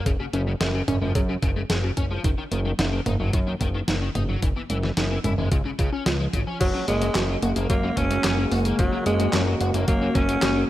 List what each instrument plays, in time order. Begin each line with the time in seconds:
0.06 analog synth bass F#1, overdriven electric guitar C#3, synth arpeggio sound G#4, kick, closed hi-hat
0.20 overdriven electric guitar C#3, synth arpeggio sound F#4
0.33 analog synth bass F#1, overdriven electric guitar C#3, synth arpeggio sound C#4, closed hi-hat
0.47 overdriven electric guitar C#3, synth arpeggio sound G#3
0.61 analog synth bass F#1, overdriven electric guitar G#3, synth arpeggio sound G#4, snare, closed hi-hat
0.74 overdriven electric guitar C#3, synth arpeggio sound F#4
0.88 analog synth bass F#1, overdriven electric guitar C#4, synth arpeggio sound C#4, closed hi-hat, mid tom
1.02 analog synth bass F#1, overdriven electric guitar F3, synth arpeggio sound G#3
1.15 analog synth bass F#2, overdriven electric guitar C#3, synth arpeggio sound G#4, kick, closed hi-hat
1.29 overdriven electric guitar C#3, synth arpeggio sound F#4
1.42 analog synth bass F#1, overdriven electric guitar C#3, synth arpeggio sound C#4, kick, closed hi-hat
1.56 overdriven electric guitar C#3, synth arpeggio sound G#3
1.70 analog synth bass F#1, overdriven electric guitar G#3, synth arpeggio sound G#4, snare, closed hi-hat
1.84 overdriven electric guitar C#3, synth arpeggio sound F#4
1.97 analog synth bass F#1, overdriven electric guitar C#4, synth arpeggio sound C#4, kick, closed hi-hat
2.11 overdriven electric guitar F3, synth arpeggio sound G#3
2.24 analog synth bass F#1, overdriven electric guitar D#3, synth arpeggio sound D#4, kick, closed hi-hat
2.38 overdriven electric guitar D#3, synth arpeggio sound C#4
2.52 analog synth bass F#1, overdriven electric guitar D#3, synth arpeggio sound A#3, closed hi-hat
2.65 overdriven electric guitar D#3, synth arpeggio sound F#3
2.79 analog synth bass F#1, overdriven electric guitar A#3, synth arpeggio sound D#4, snare, closed hi-hat
2.93 overdriven electric guitar D#3, synth arpeggio sound C#4
3.06 analog synth bass F#1, synth arpeggio sound A#3, overdriven electric guitar D#4, closed hi-hat, mid tom
3.20 analog synth bass F#1, synth arpeggio sound F#3, overdriven electric guitar F#3
3.33 analog synth bass F#2, overdriven electric guitar D#3, synth arpeggio sound D#4, kick, closed hi-hat
3.47 overdriven electric guitar D#3, synth arpeggio sound C#4
3.61 analog synth bass F#1, overdriven electric guitar D#3, synth arpeggio sound A#3, kick, closed hi-hat
3.74 overdriven electric guitar D#3, synth arpeggio sound F#3
3.88 analog synth bass F#1, overdriven electric guitar A#3, synth arpeggio sound D#4, snare, closed hi-hat
4.02 overdriven electric guitar D#3, synth arpeggio sound C#4
4.15 analog synth bass F#1, synth arpeggio sound A#3, overdriven electric guitar D#4, closed hi-hat, mid tom
4.29 overdriven electric guitar F#3, synth arpeggio sound F#3
4.42 analog synth bass F#1, overdriven electric guitar E3, synth arpeggio sound D#4, kick, closed hi-hat
4.56 overdriven electric guitar E3, synth arpeggio sound B3
4.70 analog synth bass F#1, overdriven electric guitar E3, synth arpeggio sound G#3, closed hi-hat
4.83 synth arpeggio sound E3, overdriven electric guitar E3, snare
4.97 analog synth bass F#1, overdriven electric guitar B3, synth arpeggio sound D#4, snare, closed hi-hat
5.11 overdriven electric guitar E3, synth arpeggio sound B3
5.24 analog synth bass F#1, synth arpeggio sound G#3, overdriven electric guitar E4, closed hi-hat, mid tom
5.38 analog synth bass F#1, synth arpeggio sound E3, overdriven electric guitar G#3
5.52 analog synth bass C#2, overdriven electric guitar C#3, synth arpeggio sound F4, kick, closed hi-hat
5.65 overdriven electric guitar C#3, synth arpeggio sound C#4
5.79 analog synth bass C#2, overdriven electric guitar C#3, synth arpeggio sound F4, kick, closed hi-hat
5.93 overdriven electric guitar C#4, synth arpeggio sound C#4
6.06 analog synth bass C#2, overdriven electric guitar C#3, synth arpeggio sound F4, snare, closed hi-hat
6.20 synth arpeggio sound F3, overdriven electric guitar G#3
6.33 analog synth bass G#1, overdriven electric guitar C#3, synth arpeggio sound F4, kick, closed hi-hat
6.47 synth arpeggio sound F3, overdriven electric guitar C#4
6.61 analog synth bass F#1, analog synth pad C#3 G#3 A#3 F#4, overdriven electric guitar F#3, alto saxophone F#3, synth arpeggio sound F#4, kick, closed hi-hat, crash
6.74 overdriven electric guitar F#3, synth arpeggio sound C#4
6.88 analog synth bass F#1, overdriven electric guitar F#3, alto saxophone G#3, synth arpeggio sound A#3, closed hi-hat
7.02 overdriven electric guitar F#3, synth arpeggio sound G#3, closed hi-hat
7.15 analog synth bass F#1, overdriven electric guitar C#4, synth arpeggio sound F#4, snare, clap, closed hi-hat
7.29 overdriven electric guitar F#3, synth arpeggio sound C#4
7.42 analog synth bass F#1, synth arpeggio sound A#3, overdriven electric guitar F#4, closed hi-hat
7.56 analog synth bass F#1, synth arpeggio sound G#3, overdriven electric guitar A#3, closed hi-hat
7.70 analog synth bass F#2, overdriven electric guitar F#3, alto saxophone A#3, synth arpeggio sound F#4, kick, closed hi-hat
7.83 overdriven electric guitar F#3, synth arpeggio sound C#4
7.97 analog synth bass F#1, overdriven electric guitar F#3, synth arpeggio sound A#3, alto saxophone C#4, kick, closed hi-hat
8.11 overdriven electric guitar F#3, synth arpeggio sound G#3, closed hi-hat
8.24 analog synth bass F#1, overdriven electric guitar C#4, synth arpeggio sound F#4, snare, clap, closed hi-hat
8.38 overdriven electric guitar F#3, synth arpeggio sound C#4
8.52 analog synth bass F#1, synth arpeggio sound A#3, overdriven electric guitar F#4, open hi-hat
8.65 synth arpeggio sound G#3, overdriven electric guitar A#3, closed hi-hat
8.79 analog synth bass F#1, alto saxophone F#3, overdriven electric guitar F#3, synth arpeggio sound F#4, kick, closed hi-hat
8.92 overdriven electric guitar F#3, synth arpeggio sound C#4
9.06 analog synth bass F#1, overdriven electric guitar F#3, alto saxophone G#3, synth arpeggio sound A#3, closed hi-hat
9.20 overdriven electric guitar F#3, synth arpeggio sound G#3, closed hi-hat
9.33 analog synth bass F#1, overdriven electric guitar C#4, synth arpeggio sound F#4, snare, clap, closed hi-hat
9.47 overdriven electric guitar F#3, synth arpeggio sound C#4
9.61 analog synth bass F#1, synth arpeggio sound A#3, overdriven electric guitar F#4, closed hi-hat
9.74 analog synth bass F#1, synth arpeggio sound G#3, overdriven electric guitar A#3, closed hi-hat
9.88 analog synth bass F#2, overdriven electric guitar F#3, alto saxophone A#3, synth arpeggio sound F#4, kick, closed hi-hat
10.02 overdriven electric guitar F#3, synth arpeggio sound C#4
10.15 analog synth bass F#1, overdriven electric guitar F#3, synth arpeggio sound A#3, alto saxophone C#4, kick, closed hi-hat
10.29 overdriven electric guitar F#3, synth arpeggio sound G#3, closed hi-hat
10.42 analog synth bass F#1, overdriven electric guitar C#4, synth arpeggio sound F#4, snare, clap, closed hi-hat
10.56 overdriven electric guitar F#3, synth arpeggio sound C#4